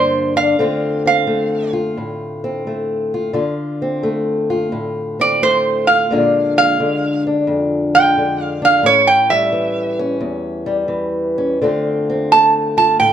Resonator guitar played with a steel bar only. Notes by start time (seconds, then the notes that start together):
Already playing: C5
0.37 F5
1.07 F5
5.21 D5
5.43 C5
5.87 F5
6.58 F5
7.95 G5
8.43 F5
8.65 F5
8.86 C#5
9.07 G5
9.30 E5
12.32 A5
12.78 A5
13.00 G5